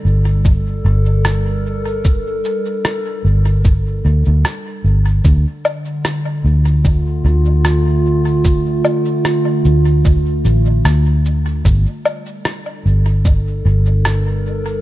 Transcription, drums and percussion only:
0, 0, Header, 1, 2, 480
1, 0, Start_track
1, 0, Key_signature, -2, "minor"
1, 0, Tempo, 800000
1, 1231, Time_signature, 4, 2, 24, 8
1, 8889, End_track
2, 0, Start_track
2, 0, Title_t, "Drums"
2, 269, Note_on_c, 9, 36, 95
2, 270, Note_on_c, 9, 82, 46
2, 329, Note_off_c, 9, 36, 0
2, 330, Note_off_c, 9, 82, 0
2, 749, Note_on_c, 9, 37, 73
2, 749, Note_on_c, 9, 82, 46
2, 809, Note_off_c, 9, 37, 0
2, 809, Note_off_c, 9, 82, 0
2, 1228, Note_on_c, 9, 82, 46
2, 1229, Note_on_c, 9, 36, 93
2, 1288, Note_off_c, 9, 82, 0
2, 1289, Note_off_c, 9, 36, 0
2, 1467, Note_on_c, 9, 82, 26
2, 1527, Note_off_c, 9, 82, 0
2, 1709, Note_on_c, 9, 37, 71
2, 1709, Note_on_c, 9, 82, 46
2, 1769, Note_off_c, 9, 37, 0
2, 1769, Note_off_c, 9, 82, 0
2, 2189, Note_on_c, 9, 36, 94
2, 2189, Note_on_c, 9, 82, 48
2, 2249, Note_off_c, 9, 36, 0
2, 2249, Note_off_c, 9, 82, 0
2, 2669, Note_on_c, 9, 37, 72
2, 2669, Note_on_c, 9, 82, 47
2, 2729, Note_off_c, 9, 37, 0
2, 2729, Note_off_c, 9, 82, 0
2, 3148, Note_on_c, 9, 36, 93
2, 3148, Note_on_c, 9, 82, 48
2, 3208, Note_off_c, 9, 36, 0
2, 3208, Note_off_c, 9, 82, 0
2, 3390, Note_on_c, 9, 77, 56
2, 3390, Note_on_c, 9, 82, 26
2, 3450, Note_off_c, 9, 77, 0
2, 3450, Note_off_c, 9, 82, 0
2, 3629, Note_on_c, 9, 37, 69
2, 3629, Note_on_c, 9, 82, 49
2, 3689, Note_off_c, 9, 37, 0
2, 3689, Note_off_c, 9, 82, 0
2, 4108, Note_on_c, 9, 36, 92
2, 4109, Note_on_c, 9, 82, 48
2, 4168, Note_off_c, 9, 36, 0
2, 4169, Note_off_c, 9, 82, 0
2, 4588, Note_on_c, 9, 37, 71
2, 4588, Note_on_c, 9, 82, 48
2, 4648, Note_off_c, 9, 37, 0
2, 4648, Note_off_c, 9, 82, 0
2, 5067, Note_on_c, 9, 82, 49
2, 5068, Note_on_c, 9, 36, 94
2, 5127, Note_off_c, 9, 82, 0
2, 5128, Note_off_c, 9, 36, 0
2, 5307, Note_on_c, 9, 77, 58
2, 5307, Note_on_c, 9, 82, 27
2, 5367, Note_off_c, 9, 77, 0
2, 5367, Note_off_c, 9, 82, 0
2, 5550, Note_on_c, 9, 37, 70
2, 5550, Note_on_c, 9, 82, 50
2, 5610, Note_off_c, 9, 37, 0
2, 5610, Note_off_c, 9, 82, 0
2, 5790, Note_on_c, 9, 82, 27
2, 5850, Note_off_c, 9, 82, 0
2, 6030, Note_on_c, 9, 36, 92
2, 6030, Note_on_c, 9, 82, 49
2, 6090, Note_off_c, 9, 36, 0
2, 6090, Note_off_c, 9, 82, 0
2, 6270, Note_on_c, 9, 82, 28
2, 6330, Note_off_c, 9, 82, 0
2, 6511, Note_on_c, 9, 37, 72
2, 6511, Note_on_c, 9, 82, 50
2, 6571, Note_off_c, 9, 37, 0
2, 6571, Note_off_c, 9, 82, 0
2, 6752, Note_on_c, 9, 82, 28
2, 6812, Note_off_c, 9, 82, 0
2, 6991, Note_on_c, 9, 36, 97
2, 6992, Note_on_c, 9, 82, 50
2, 7051, Note_off_c, 9, 36, 0
2, 7052, Note_off_c, 9, 82, 0
2, 7233, Note_on_c, 9, 77, 60
2, 7233, Note_on_c, 9, 82, 28
2, 7293, Note_off_c, 9, 77, 0
2, 7293, Note_off_c, 9, 82, 0
2, 7471, Note_on_c, 9, 37, 73
2, 7471, Note_on_c, 9, 82, 51
2, 7531, Note_off_c, 9, 37, 0
2, 7531, Note_off_c, 9, 82, 0
2, 7950, Note_on_c, 9, 36, 96
2, 7951, Note_on_c, 9, 82, 51
2, 8010, Note_off_c, 9, 36, 0
2, 8011, Note_off_c, 9, 82, 0
2, 8431, Note_on_c, 9, 37, 76
2, 8431, Note_on_c, 9, 82, 52
2, 8491, Note_off_c, 9, 37, 0
2, 8491, Note_off_c, 9, 82, 0
2, 8889, End_track
0, 0, End_of_file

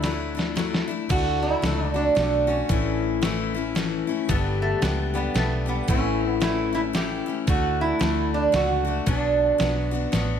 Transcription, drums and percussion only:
0, 0, Header, 1, 2, 480
1, 0, Start_track
1, 0, Key_signature, 2, "major"
1, 0, Tempo, 531444
1, 989, Time_signature, 3, 2, 24, 8
1, 9391, End_track
2, 0, Start_track
2, 0, Title_t, "Drums"
2, 33, Note_on_c, 9, 38, 56
2, 33, Note_on_c, 9, 51, 60
2, 123, Note_off_c, 9, 38, 0
2, 123, Note_off_c, 9, 51, 0
2, 352, Note_on_c, 9, 38, 70
2, 442, Note_off_c, 9, 38, 0
2, 514, Note_on_c, 9, 38, 63
2, 514, Note_on_c, 9, 51, 58
2, 604, Note_off_c, 9, 38, 0
2, 604, Note_off_c, 9, 51, 0
2, 671, Note_on_c, 9, 38, 79
2, 762, Note_off_c, 9, 38, 0
2, 993, Note_on_c, 9, 36, 104
2, 995, Note_on_c, 9, 49, 72
2, 995, Note_on_c, 9, 51, 52
2, 1084, Note_off_c, 9, 36, 0
2, 1085, Note_off_c, 9, 49, 0
2, 1085, Note_off_c, 9, 51, 0
2, 1477, Note_on_c, 9, 38, 80
2, 1477, Note_on_c, 9, 51, 56
2, 1567, Note_off_c, 9, 38, 0
2, 1567, Note_off_c, 9, 51, 0
2, 1957, Note_on_c, 9, 38, 79
2, 1957, Note_on_c, 9, 51, 53
2, 2047, Note_off_c, 9, 38, 0
2, 2047, Note_off_c, 9, 51, 0
2, 2432, Note_on_c, 9, 51, 55
2, 2434, Note_on_c, 9, 36, 96
2, 2522, Note_off_c, 9, 51, 0
2, 2525, Note_off_c, 9, 36, 0
2, 2914, Note_on_c, 9, 38, 80
2, 2914, Note_on_c, 9, 51, 61
2, 3004, Note_off_c, 9, 38, 0
2, 3004, Note_off_c, 9, 51, 0
2, 3396, Note_on_c, 9, 38, 81
2, 3396, Note_on_c, 9, 51, 58
2, 3486, Note_off_c, 9, 38, 0
2, 3486, Note_off_c, 9, 51, 0
2, 3875, Note_on_c, 9, 36, 94
2, 3876, Note_on_c, 9, 51, 56
2, 3966, Note_off_c, 9, 36, 0
2, 3966, Note_off_c, 9, 51, 0
2, 4356, Note_on_c, 9, 38, 77
2, 4356, Note_on_c, 9, 51, 58
2, 4446, Note_off_c, 9, 38, 0
2, 4446, Note_off_c, 9, 51, 0
2, 4837, Note_on_c, 9, 38, 77
2, 4837, Note_on_c, 9, 51, 54
2, 4927, Note_off_c, 9, 38, 0
2, 4927, Note_off_c, 9, 51, 0
2, 5313, Note_on_c, 9, 51, 52
2, 5314, Note_on_c, 9, 36, 101
2, 5403, Note_off_c, 9, 51, 0
2, 5405, Note_off_c, 9, 36, 0
2, 5795, Note_on_c, 9, 38, 78
2, 5795, Note_on_c, 9, 51, 54
2, 5885, Note_off_c, 9, 38, 0
2, 5885, Note_off_c, 9, 51, 0
2, 6274, Note_on_c, 9, 38, 76
2, 6274, Note_on_c, 9, 51, 53
2, 6364, Note_off_c, 9, 38, 0
2, 6364, Note_off_c, 9, 51, 0
2, 6752, Note_on_c, 9, 51, 55
2, 6753, Note_on_c, 9, 36, 102
2, 6842, Note_off_c, 9, 51, 0
2, 6843, Note_off_c, 9, 36, 0
2, 7233, Note_on_c, 9, 38, 83
2, 7233, Note_on_c, 9, 51, 61
2, 7323, Note_off_c, 9, 38, 0
2, 7323, Note_off_c, 9, 51, 0
2, 7711, Note_on_c, 9, 38, 82
2, 7711, Note_on_c, 9, 51, 60
2, 7802, Note_off_c, 9, 38, 0
2, 7802, Note_off_c, 9, 51, 0
2, 8189, Note_on_c, 9, 51, 59
2, 8190, Note_on_c, 9, 36, 95
2, 8280, Note_off_c, 9, 51, 0
2, 8281, Note_off_c, 9, 36, 0
2, 8669, Note_on_c, 9, 38, 83
2, 8669, Note_on_c, 9, 51, 58
2, 8760, Note_off_c, 9, 38, 0
2, 8760, Note_off_c, 9, 51, 0
2, 9148, Note_on_c, 9, 38, 78
2, 9148, Note_on_c, 9, 51, 54
2, 9238, Note_off_c, 9, 38, 0
2, 9238, Note_off_c, 9, 51, 0
2, 9391, End_track
0, 0, End_of_file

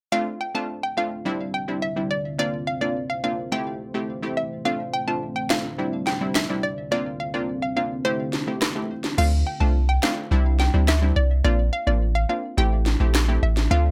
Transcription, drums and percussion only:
0, 0, Header, 1, 2, 480
1, 0, Start_track
1, 0, Key_signature, -1, "minor"
1, 0, Tempo, 566038
1, 105, Time_signature, 4, 2, 24, 8
1, 11797, End_track
2, 0, Start_track
2, 0, Title_t, "Drums"
2, 4665, Note_on_c, 9, 38, 106
2, 4673, Note_on_c, 9, 26, 88
2, 4750, Note_off_c, 9, 38, 0
2, 4757, Note_off_c, 9, 26, 0
2, 5145, Note_on_c, 9, 38, 64
2, 5230, Note_off_c, 9, 38, 0
2, 5387, Note_on_c, 9, 38, 118
2, 5394, Note_on_c, 9, 26, 96
2, 5472, Note_off_c, 9, 38, 0
2, 5479, Note_off_c, 9, 26, 0
2, 7065, Note_on_c, 9, 38, 64
2, 7149, Note_off_c, 9, 38, 0
2, 7307, Note_on_c, 9, 37, 96
2, 7307, Note_on_c, 9, 38, 113
2, 7315, Note_on_c, 9, 26, 93
2, 7392, Note_off_c, 9, 37, 0
2, 7392, Note_off_c, 9, 38, 0
2, 7399, Note_off_c, 9, 26, 0
2, 7666, Note_on_c, 9, 38, 67
2, 7750, Note_off_c, 9, 38, 0
2, 7786, Note_on_c, 9, 49, 88
2, 7871, Note_off_c, 9, 49, 0
2, 8506, Note_on_c, 9, 38, 105
2, 8513, Note_on_c, 9, 26, 85
2, 8590, Note_off_c, 9, 38, 0
2, 8598, Note_off_c, 9, 26, 0
2, 8985, Note_on_c, 9, 38, 67
2, 9069, Note_off_c, 9, 38, 0
2, 9228, Note_on_c, 9, 38, 118
2, 9235, Note_on_c, 9, 26, 98
2, 9313, Note_off_c, 9, 38, 0
2, 9320, Note_off_c, 9, 26, 0
2, 10905, Note_on_c, 9, 38, 68
2, 10990, Note_off_c, 9, 38, 0
2, 11148, Note_on_c, 9, 38, 117
2, 11155, Note_on_c, 9, 26, 93
2, 11233, Note_off_c, 9, 38, 0
2, 11240, Note_off_c, 9, 26, 0
2, 11506, Note_on_c, 9, 38, 68
2, 11591, Note_off_c, 9, 38, 0
2, 11797, End_track
0, 0, End_of_file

